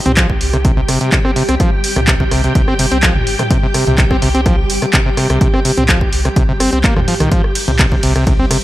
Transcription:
Already playing: string machine G4 G5
0.06 sub bass C2, acid bass C4, closed hi-hat, mid tom
0.17 acid bass F3, kick, cross-stick, clap, closed hi-hat
0.30 kick
0.41 sub bass C2, open hi-hat
0.53 acid bass C3, cross-stick, closed hi-hat
0.65 acid bass C3, kick, closed hi-hat
0.77 acid bass C3
0.88 sub bass G1, acid bass C3, cross-stick, open hi-hat
1.01 acid bass C3, closed hi-hat
1.12 acid bass C3, kick, clap, closed hi-hat
1.25 acid bass C4, cross-stick
1.36 acid bass C3, open hi-hat
1.49 sub bass C2, acid bass C4, cross-stick, closed hi-hat
1.60 acid bass F3, kick, cross-stick, closed hi-hat
1.84 open hi-hat
1.96 sub bass C2, acid bass C3, cross-stick, closed hi-hat, mid tom
2.08 acid bass C3, kick, clap, closed hi-hat
2.20 acid bass C3, kick
2.31 sub bass C2, acid bass C3, cross-stick, open hi-hat
2.44 acid bass C3, closed hi-hat
2.55 sub bass C2, kick, closed hi-hat
2.68 sub bass G1, acid bass C4, cross-stick
2.79 sub bass G1, acid bass C3, open hi-hat
2.92 sub bass C2, acid bass C4, closed hi-hat
3.03 acid bass F3, kick, cross-stick, clap, closed hi-hat
3.15 mid tom
3.27 sub bass G1, open hi-hat
3.39 acid bass C3, cross-stick, closed hi-hat, mid tom
3.51 acid bass C3, kick, closed hi-hat
3.63 acid bass C3
3.74 acid bass C3, cross-stick, open hi-hat
3.87 sub bass C2, acid bass C3, closed hi-hat, mid tom
3.98 acid bass C3, kick, clap, closed hi-hat
4.11 acid bass C4, kick, cross-stick
4.22 sub bass C2, acid bass C3, open hi-hat
4.35 acid bass C4, closed hi-hat
4.46 acid bass F3, kick, cross-stick, closed hi-hat
4.70 sub bass G1, open hi-hat
4.82 acid bass C3, cross-stick, closed hi-hat
4.93 acid bass C3, kick, clap, closed hi-hat
5.06 acid bass C3
5.17 acid bass C3, cross-stick, open hi-hat
5.30 sub bass C2, acid bass C3, cross-stick, closed hi-hat
5.41 acid bass C3, kick, closed hi-hat
5.54 acid bass C4, cross-stick
5.65 acid bass C3, open hi-hat
5.77 sub bass C2, acid bass C4, closed hi-hat, mid tom
5.89 acid bass F3, kick, cross-stick, clap, closed hi-hat
6.01 kick
6.13 sub bass C2, open hi-hat
6.25 acid bass C3, cross-stick, closed hi-hat
6.36 sub bass C2, acid bass C3, kick, closed hi-hat
6.49 sub bass G1, acid bass C3
6.60 sub bass G1, acid bass C4, cross-stick, open hi-hat
6.73 sub bass C2, acid bass C4, closed hi-hat
6.84 sub bass A#1, acid bass A#3, kick, clap, closed hi-hat
6.96 sub bass D#2, acid bass F3, cross-stick, mid tom
7.08 acid bass F3, open hi-hat
7.20 sub bass C2, acid bass D#3, cross-stick, closed hi-hat, mid tom
7.32 acid bass F3, string machine G4 G5, kick, closed hi-hat
7.44 cross-stick
7.55 open hi-hat, ride
7.68 sub bass C2, acid bass C3, closed hi-hat, mid tom
7.79 acid bass C3, kick, cross-stick, clap, closed hi-hat
7.92 acid bass C3, kick
8.03 sub bass C2, acid bass C3, open hi-hat, ride
8.16 acid bass C3, cross-stick, closed hi-hat
8.27 acid bass C3, kick, closed hi-hat
8.39 acid bass C4
8.51 sub bass G1, acid bass C3, cross-stick, open hi-hat, ride

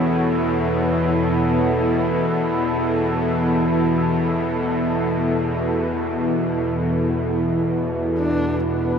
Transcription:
Already playing: synth drone E2 B2, ambient pad B3 E4 A4 C#5
3.13 ambient pad B4
8.18 horsehead fiddle D4
8.63 synth drone E2 B2, ambient pad E3, synth texture B3 B4, horsehead fiddle B3
8.79 ambient pad A3

